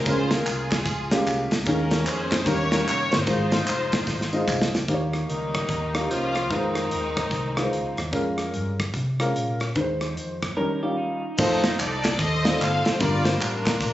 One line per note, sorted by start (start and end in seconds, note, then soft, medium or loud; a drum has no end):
0.04 0.40 C#2 loud
0.04 0.68 C#3 medium
0.04 0.61 G#3 medium
0.04 0.61 A#3 medium
0.04 0.61 C#4 medium
0.04 0.46 F4 medium
0.04 0.61 F4 medium
0.04 0.44 G#4 medium
0.04 0.61 A#4 medium
0.04 0.30 C5 loud
0.04 kick loud
0.04 ride bell medium
0.04 tambourine medium
0.30 0.45 A#4 medium
0.30 snare loud
0.30 ride bell medium
0.30 tambourine medium
0.45 0.80 C2 medium
0.45 1.23 F4 medium
0.45 1.26 G#4 medium
0.45 clap loud
0.45 ride bell medium
0.45 tambourine loud
0.72 kick loud
0.72 snare loud
0.72 clap medium
0.72 ride bell medium
0.72 tambourine medium
0.86 1.20 C#2 loud
0.86 kick loud
0.86 ride bell medium
0.86 tambourine medium
1.11 1.50 G#3 medium
1.11 1.50 A#3 medium
1.11 1.50 C#4 medium
1.11 1.51 F4 medium
1.11 1.51 G4 medium
1.11 snare loud
1.11 ride bell medium
1.11 tambourine medium
1.26 1.48 C2 medium
1.26 clap medium
1.26 ride bell medium
1.26 tambourine medium
1.51 1.64 C#2 medium
1.51 snare loud
1.51 ride bell medium
1.51 tambourine medium
1.66 2.06 D#2 loud
1.66 2.28 D#3 medium
1.66 2.22 G#3 medium
1.66 2.22 A#3 medium
1.66 2.43 C#4 medium
1.66 2.22 C#4 medium
1.66 2.22 D#4 medium
1.66 1.73 G#4 medium
1.66 2.03 A#4 medium
1.66 kick loud
1.66 ride bell medium
1.66 tambourine medium
1.72 2.24 A#4 medium
1.91 snare loud
1.91 ride bell medium
1.91 tambourine medium
2.05 2.41 F2 loud
2.05 2.44 G#4 medium
2.05 2.46 C5 loud
2.05 clap medium
2.05 ride bell medium
2.05 tambourine medium
2.32 kick loud
2.32 snare loud
2.32 clap medium
2.32 ride bell medium
2.32 tambourine medium
2.46 2.81 D#2 medium
2.46 3.08 D#3 medium
2.46 2.67 G3 medium
2.46 2.67 A#3 medium
2.46 2.67 C#4 medium
2.46 2.67 D#4 medium
2.46 3.24 G4 medium
2.46 2.67 A#4 medium
2.46 3.23 A#4 medium
2.46 2.85 C#5 loud
2.46 kick loud
2.46 ride bell medium
2.46 tambourine medium
2.71 3.10 G3 medium
2.71 3.11 A#3 medium
2.71 3.11 C#4 medium
2.71 3.11 D#4 medium
2.71 3.11 A#4 medium
2.71 snare loud
2.71 ride bell medium
2.71 tambourine medium
2.86 3.08 F1 medium
2.86 3.10 C#5 loud
2.86 clap medium
2.86 ride bell medium
2.86 tambourine medium
3.11 3.25 G1 loud
3.11 4.44 D#4 medium
3.11 4.44 F4 medium
3.11 4.48 C5 loud
3.11 snare loud
3.11 ride bell medium
3.11 tambourine medium
3.27 3.61 G#1 loud
3.27 3.89 G#2 medium
3.27 3.82 G#3 medium
3.27 3.82 C4 medium
3.27 3.82 D#4 medium
3.27 3.83 F4 medium
3.27 3.83 C5 medium
3.27 kick loud
3.27 ride bell medium
3.27 tambourine medium
3.52 snare loud
3.52 ride bell medium
3.52 tambourine medium
3.67 4.02 F1 loud
3.67 clap medium
3.67 ride bell medium
3.67 tambourine medium
3.92 kick loud
3.92 snare loud
3.92 ride bell medium
3.92 tambourine medium
4.07 4.42 G#1 medium
4.07 kick loud
4.07 snare medium
4.07 tambourine medium
4.21 snare medium
4.33 4.72 G#3 medium
4.33 4.72 C4 medium
4.33 4.72 D#4 medium
4.33 4.72 F4 medium
4.33 4.72 D#5 medium
4.33 tambourine medium
4.48 4.70 C2 medium
4.48 kick loud
4.48 clap medium
4.48 mid tom medium
4.48 tambourine medium
4.62 snare loud
4.74 4.86 C#2 medium
4.74 snare loud
4.74 tambourine medium
4.88 5.23 D#2 medium
4.88 5.50 D#3 medium
4.88 5.44 A#3 medium
4.88 5.44 D#4 medium
4.88 5.44 G4 medium
4.88 4.95 C5 medium
4.88 kick loud
4.88 closed hi-hat medium
4.94 5.47 C#5 medium
5.13 cross-stick medium
5.13 closed hi-hat medium
5.29 5.63 C#2 medium
5.29 6.06 D#3 medium
5.29 6.06 G3 medium
5.29 6.06 A#3 medium
5.29 6.06 D#4 medium
5.29 closed hi-hat medium
5.54 kick medium
5.54 cross-stick loud
5.54 closed hi-hat medium
5.69 6.10 D#2 medium
5.69 kick loud
5.69 closed hi-hat medium
5.94 6.34 A#3 medium
5.94 6.34 D#4 medium
5.94 5.98 F4 soft
5.94 6.34 D#5 medium
5.94 cross-stick loud
5.94 closed hi-hat medium
5.99 6.36 G4 medium
6.10 6.51 C2 medium
6.10 6.53 F3 medium
6.10 6.48 A#3 medium
6.10 6.48 C#4 medium
6.10 6.51 F4 loud
6.10 closed hi-hat medium
6.35 cross-stick medium
6.35 closed hi-hat medium
6.50 6.85 F2 medium
6.50 7.98 D#3 medium
6.50 7.06 G#3 medium
6.50 7.94 G#3 medium
6.50 7.94 C4 medium
6.50 7.06 D#4 medium
6.50 7.98 D#4 medium
6.50 7.06 F4 medium
6.50 6.57 B4 medium
6.50 kick loud
6.50 closed hi-hat medium
6.56 7.09 C5 medium
6.75 cross-stick medium
6.75 closed hi-hat medium
6.91 7.26 D#2 medium
6.91 closed hi-hat medium
7.17 kick medium
7.17 cross-stick loud
7.17 closed hi-hat medium
7.31 7.66 C2 medium
7.31 kick loud
7.31 closed hi-hat medium
7.57 7.97 G#3 medium
7.57 7.97 D#4 medium
7.57 7.97 F4 medium
7.57 7.61 B4 medium
7.57 cross-stick loud
7.57 closed hi-hat medium
7.63 7.99 C5 medium
7.73 7.94 C#2 medium
7.73 closed hi-hat medium
7.97 8.11 D#2 medium
7.97 cross-stick medium
7.97 closed hi-hat medium
8.12 8.48 F2 medium
8.12 8.69 G#3 medium
8.12 8.69 C#4 medium
8.12 8.69 F4 medium
8.12 8.69 A#4 medium
8.12 kick loud
8.12 closed hi-hat medium
8.38 cross-stick medium
8.38 closed hi-hat medium
8.54 8.88 G2 medium
8.54 closed hi-hat medium
8.80 kick medium
8.80 cross-stick loud
8.80 closed hi-hat medium
8.94 9.35 C3 medium
8.94 kick loud
8.94 closed hi-hat medium
9.20 9.59 G#3 medium
9.20 9.24 C4 soft
9.20 9.59 F4 medium
9.20 9.60 A#4 medium
9.20 cross-stick loud
9.20 closed hi-hat medium
9.25 9.62 C#4 medium
9.35 9.70 A#2 medium
9.35 closed hi-hat medium
9.60 cross-stick medium
9.60 closed hi-hat medium
9.75 10.17 D#2 medium
9.75 10.38 D#3 medium
9.75 10.31 G#3 medium
9.75 10.32 C4 medium
9.75 10.32 D#4 medium
9.75 9.82 B4 medium
9.75 kick loud
9.75 closed hi-hat medium
9.81 10.34 C5 medium
10.01 cross-stick medium
10.01 closed hi-hat soft
10.17 10.51 F2 medium
10.17 closed hi-hat medium
10.42 kick medium
10.42 cross-stick loud
10.42 closed hi-hat medium
10.57 11.19 D#3 medium
10.57 10.77 G3 medium
10.57 10.77 C#4 medium
10.57 10.77 D#4 medium
10.57 10.81 A#4 medium
10.57 10.78 A#4 medium
10.83 11.22 G3 medium
10.83 11.22 C#4 medium
10.83 11.22 D#4 medium
10.83 11.22 F4 medium
10.83 10.97 G4 medium
10.97 11.36 D#4 medium
11.38 11.73 F2 loud
11.38 11.94 A3 medium
11.38 11.94 C4 medium
11.38 12.15 D#4 medium
11.38 11.94 D#4 medium
11.38 11.94 F4 medium
11.38 11.78 A4 medium
11.38 11.76 C5 medium
11.38 11.95 C5 medium
11.38 kick loud
11.38 crash loud
11.38 tambourine medium
11.64 snare loud
11.64 ride bell medium
11.64 tambourine medium
11.79 12.14 C2 medium
11.79 12.19 A4 medium
11.79 12.17 D5 loud
11.79 clap medium
11.79 ride bell medium
11.79 tambourine loud
12.05 kick loud
12.05 snare loud
12.05 clap medium
12.05 ride bell medium
12.05 tambourine medium
12.19 12.54 D#2 medium
12.19 12.97 A4 medium
12.19 12.84 C5 medium
12.19 12.60 D#5 loud
12.19 kick loud
12.19 ride bell medium
12.19 tambourine medium
12.45 12.84 A3 medium
12.45 12.84 C4 medium
12.45 12.84 D#4 medium
12.45 12.84 F4 medium
12.45 12.84 D5 medium
12.45 snare loud
12.45 ride bell medium
12.45 tambourine medium
12.60 12.82 G1 loud
12.60 12.85 F5 loud
12.60 clap medium
12.60 ride bell medium
12.60 tambourine medium
12.85 12.98 F1 loud
12.85 13.00 C5 loud
12.85 snare loud
12.85 ride bell medium
12.85 tambourine medium
13.00 13.35 G1 loud
13.00 13.62 G2 medium
13.00 13.56 G3 medium
13.00 13.56 A#3 medium
13.00 13.56 D4 medium
13.00 13.39 F4 medium
13.00 13.56 F4 medium
13.00 13.38 A#4 medium
13.00 13.56 A#4 medium
13.00 13.24 D5 loud
13.00 kick loud
13.00 ride bell medium
13.00 tambourine medium
13.25 13.41 C5 medium
13.25 snare loud
13.25 ride bell medium
13.25 tambourine medium
13.40 13.75 A1 medium
13.40 13.93 D4 medium
13.40 13.93 F4 medium
13.40 13.93 A#4 medium
13.40 clap loud
13.40 ride bell medium
13.40 tambourine loud
13.66 kick loud
13.66 snare loud
13.66 clap medium
13.66 ride bell medium
13.66 tambourine medium
13.81 13.93 A#1 loud
13.81 kick loud
13.81 ride bell medium
13.81 tambourine medium